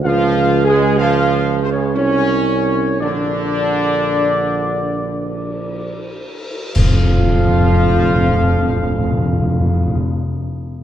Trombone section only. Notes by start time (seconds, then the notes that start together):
0.05 F3
0.67 G#3
0.98 F3
1.62 C3
1.72 C#3
1.94 C#4
3.01 D3
6.75 F3